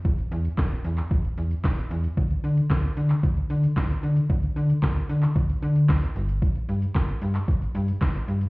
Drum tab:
HH |-xox-xox-xox-xox|-xox-xox-xox-xox|-xox-xox-xox-xox|-xox-xox-xox-xox|
SH |xxxxxxxxxxxxxxxx|xxxxxxxxxxxxxxxx|xxxxxxxxxxxxxxxx|xxxxxxxxxxxxxxxx|
CP |----x--x----x---|----x--x----x---|----x--x----x---|----x--x----x---|
SD |----o-------o---|----o-------o---|----o-------o---|----o-------o---|
BD |o---o---o---o---|o---o---o---o---|o---o---o---o---|o---o---o---o---|